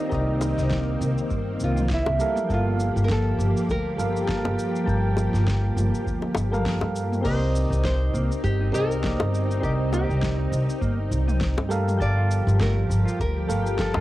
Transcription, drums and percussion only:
0.12 kick, shaker
0.41 high bongo, shaker
0.58 snare, shaker
0.70 kick, snare, shaker
1.02 shaker
1.18 shaker
1.31 kick, shaker
1.60 shaker
1.76 mid tom, shaker
1.89 kick, snare, shaker
2.06 high bongo
2.20 shaker
2.36 mid tom, shaker
2.50 kick, shaker
2.80 shaker
2.97 shaker
3.09 kick, snare, shaker
3.40 shaker
3.57 shaker
3.69 kick, shaker
3.99 shaker
4.16 shaker
4.28 kick, snare, shaker
4.45 high bongo
4.59 shaker
4.76 shaker
4.88 kick, shaker
5.17 high bongo, shaker
5.34 snare, shaker
5.47 kick, snare, shaker
5.77 mid tom, shaker
5.94 shaker
6.06 kick, shaker
6.22 high bongo
6.35 high bongo, shaker
6.53 mid tom, shaker
6.66 kick, snare, shaker
6.82 high bongo
6.96 shaker
7.12 mid tom, shaker
7.25 kick, crash, shaker
7.56 shaker
7.73 shaker
7.85 kick, snare, shaker
8.15 shaker
8.32 shaker
8.44 kick, shaker
8.75 shaker
8.91 shaker
9.03 kick, snare, shaker
9.20 high bongo
9.34 shaker
9.51 shaker
9.63 kick, shaker
9.92 high bongo, shaker
10.10 shaker
10.22 kick, snare, shaker
10.53 shaker
10.70 shaker
10.82 kick, shaker
11.12 shaker
11.28 mid tom, shaker
11.41 kick, snare, shaker
11.58 high bongo
11.71 shaker
11.88 mid tom, shaker
12.00 kick, shaker
12.31 shaker
12.48 shaker
12.60 kick, snare, shaker
12.91 shaker
13.08 shaker
13.19 kick, shaker
13.50 shaker
13.66 shaker
13.79 kick, snare, shaker
13.94 high bongo

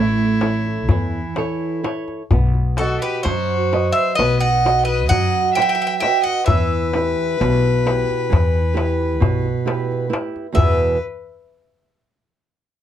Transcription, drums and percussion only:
0.18 darbuka tek
0.41 darbuka tek
0.66 darbuka tek
0.89 darbuka dum
1.36 darbuka tek
1.84 darbuka tek
2.08 darbuka tek
2.31 darbuka dum
2.54 darbuka tek
2.77 darbuka tek
3.25 darbuka tek
3.73 darbuka tek
4.19 darbuka tek
4.43 darbuka tek
4.66 darbuka tek
4.88 darbuka tek
5.11 darbuka dum
5.57 darbuka tek
6.02 darbuka tek
6.25 darbuka tek
6.48 darbuka dum
6.93 darbuka tek
7.41 darbuka tek
7.65 darbuka tek
7.87 darbuka tek
8.10 darbuka tek
8.33 darbuka tek, darbuka dum
8.55 darbuka tek
8.77 darbuka tek
9.00 darbuka tek
9.22 darbuka dum
9.45 darbuka tek
9.68 darbuka tek
9.92 darbuka tek
10.13 darbuka tek
10.36 darbuka tek
10.58 darbuka dum

